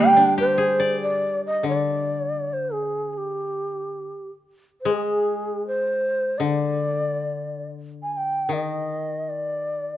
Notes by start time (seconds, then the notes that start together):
Already playing: D3 G3 G5
0.17 D4
0.38 G4 C5
0.58 G#4
0.80 D5
1.03 D5
1.47 D#5
1.63 D3
1.69 D5
2.53 C5
2.73 G#4
3.13 G#4
3.18 G4
4.81 C5
4.85 G#3
4.91 G#4
5.67 C5
6.38 D3 D#5
6.44 D5
8.03 G#5
8.12 G#5
8.17 G5
8.49 D#3
8.53 D#5
9.29 D5